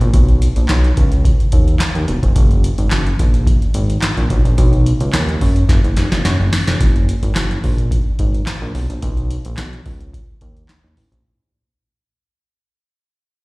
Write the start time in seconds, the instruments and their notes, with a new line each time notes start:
0.01 analog synth bass A#1, closed hi-hat
0.14 analog synth bass B1, kick, closed hi-hat
0.29 closed hi-hat
0.42 closed hi-hat
0.56 analog synth bass A#1, closed hi-hat
0.69 analog synth bass B1, snare, clap, closed hi-hat
0.84 closed hi-hat
0.97 analog synth bass C#2, kick, closed hi-hat
1.12 closed hi-hat
1.25 kick, closed hi-hat
1.40 closed hi-hat
1.52 analog synth bass D#2, kick, closed hi-hat
1.68 closed hi-hat
1.80 snare, clap, closed hi-hat
1.95 analog synth bass D#2, closed hi-hat
2.08 analog synth bass E1, closed hi-hat
2.23 analog synth bass F1, kick, closed hi-hat
2.36 analog synth bass F#1, kick, closed hi-hat
2.51 closed hi-hat
2.64 closed hi-hat
2.78 analog synth bass G#1, closed hi-hat
2.91 analog synth bass F#1, snare, clap, closed hi-hat
3.07 closed hi-hat
3.19 analog synth bass A#1, kick, closed hi-hat
3.34 closed hi-hat
3.47 kick, closed hi-hat
3.62 closed hi-hat
3.74 analog synth bass G#1, closed hi-hat
3.90 closed hi-hat
4.02 snare, clap, closed hi-hat
4.17 analog synth bass A#1, closed hi-hat
4.30 analog synth bass B1, kick, closed hi-hat
4.45 analog synth bass A#1, closed hi-hat
4.58 analog synth bass B1, kick, closed hi-hat
4.73 closed hi-hat
4.86 closed hi-hat
5.00 analog synth bass C#2, closed hi-hat
5.13 analog synth bass D#2, snare, clap, closed hi-hat
5.29 closed hi-hat
5.41 analog synth bass F#2, kick, open hi-hat
5.56 closed hi-hat
5.69 analog synth bass F#1, kick, snare, closed hi-hat
5.84 analog synth bass F#1, closed hi-hat
5.97 analog synth bass F1, snare, closed hi-hat
6.12 analog synth bass F#1, snare, closed hi-hat
6.25 analog synth bass F#2, snare, closed hi-hat
6.40 analog synth bass F#1
6.53 snare, open hi-hat
6.67 analog synth bass F1, snare, closed hi-hat
6.80 analog synth bass F#1, kick, closed hi-hat
6.96 closed hi-hat
7.09 closed hi-hat
7.23 analog synth bass G#1, closed hi-hat
7.35 analog synth bass F#1, snare, clap, closed hi-hat
7.51 closed hi-hat
7.64 analog synth bass A#1, kick, open hi-hat
7.78 closed hi-hat
7.91 kick, closed hi-hat
8.19 analog synth bass G#1, kick, closed hi-hat
8.34 closed hi-hat
8.47 snare, clap, closed hi-hat
8.62 analog synth bass A#1
8.75 analog synth bass B1, open hi-hat
8.90 analog synth bass A#1, closed hi-hat
9.02 analog synth bass B1, kick, closed hi-hat
9.17 closed hi-hat
9.31 closed hi-hat
9.45 analog synth bass A#1, closed hi-hat
9.57 analog synth bass B1, snare, clap, closed hi-hat
9.73 closed hi-hat
9.86 analog synth bass C#2, kick, open hi-hat
10.01 closed hi-hat
10.14 kick, closed hi-hat
10.41 analog synth bass D#2, kick, closed hi-hat
10.57 closed hi-hat
10.69 snare, clap, closed hi-hat
10.84 analog synth bass D#2
10.97 analog synth bass A1, open hi-hat
11.12 analog synth bass A#1, closed hi-hat